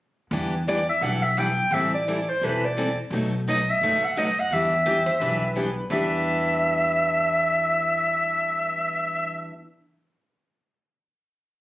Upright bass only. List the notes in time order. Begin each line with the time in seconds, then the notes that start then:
0.31 E2
1.01 B1
1.71 A1
2.41 E1
3.10 B1
3.81 F#1
4.51 E2
5.20 B1
5.90 E2